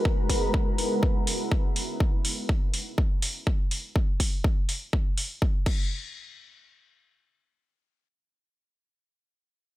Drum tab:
CC |--------|--------|-------x|--------|
HH |-o-o-o-o|-o-o-o-o|-o-o-o--|--------|
BD |ooo-o-o-|o-o-o-o-|ooo-o-oo|--------|

CC |--------|
HH |--------|
BD |--------|